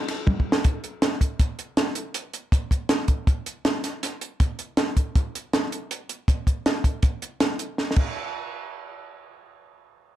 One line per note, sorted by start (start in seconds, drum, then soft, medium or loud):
0.08 snare soft
0.08 ride medium
0.27 kick loud
0.27 high tom medium
0.40 kick medium
0.52 snare loud
0.64 kick loud
0.64 closed hi-hat medium
0.84 closed hi-hat soft
1.02 snare medium
1.02 closed hi-hat medium
1.21 kick medium
1.21 closed hi-hat medium
1.39 kick medium
1.39 closed hi-hat medium
1.59 closed hi-hat medium
1.77 snare loud
1.77 closed hi-hat medium
1.95 closed hi-hat medium
2.14 closed hi-hat medium
2.33 closed hi-hat medium
2.52 kick medium
2.52 closed hi-hat medium
2.71 kick medium
2.71 closed hi-hat soft
2.89 snare medium
2.89 closed hi-hat medium
3.08 kick medium
3.08 closed hi-hat soft
3.27 kick medium
3.27 closed hi-hat medium
3.46 closed hi-hat medium
3.65 snare loud
3.65 closed hi-hat medium
3.84 snare soft
3.84 closed hi-hat medium
4.03 snare soft
4.03 closed hi-hat medium
4.21 closed hi-hat medium
4.40 kick medium
4.40 closed hi-hat medium
4.59 closed hi-hat medium
4.77 snare loud
4.77 closed hi-hat medium
4.97 kick medium
4.97 closed hi-hat medium
5.15 kick medium
5.15 closed hi-hat medium
5.35 closed hi-hat medium
5.53 snare loud
5.53 closed hi-hat medium
5.72 closed hi-hat medium
5.91 closed hi-hat medium
6.09 closed hi-hat medium
6.28 kick loud
6.28 closed hi-hat medium
6.47 kick medium
6.47 closed hi-hat soft
6.66 snare loud
6.66 closed hi-hat medium
6.84 kick medium
6.84 closed hi-hat medium
7.03 kick medium
7.03 closed hi-hat medium
7.22 closed hi-hat medium
7.40 snare loud
7.40 closed hi-hat medium
7.59 closed hi-hat medium
7.78 snare soft
7.91 snare soft
7.96 kick medium
7.96 crash medium